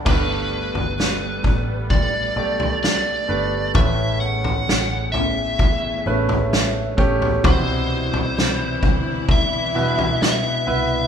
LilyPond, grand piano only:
<<
  \new Staff \with { instrumentName = "Grand piano" } { \time 4/4 \key g \major \tempo 4 = 65 << { <d'' fis''>16 r2. r8. | r1 | r1 | } \\ { <a g' b'>2 r8 <a g' d''>4 <a g' b'>8 | <a cis' b'>2 r8 <a cis' b'>4 <a cis' g'>8 | <b, e' c''>2 r8 <b, e' b'>4 <b e' b'>8 | } >> }
  \new Staff \with { instrumentName = "Grand piano" } { \clef bass \time 4/4 \key g \major g,4. r2 r8 | a,4. r2 r8 | c4. r2 r8 | }
>>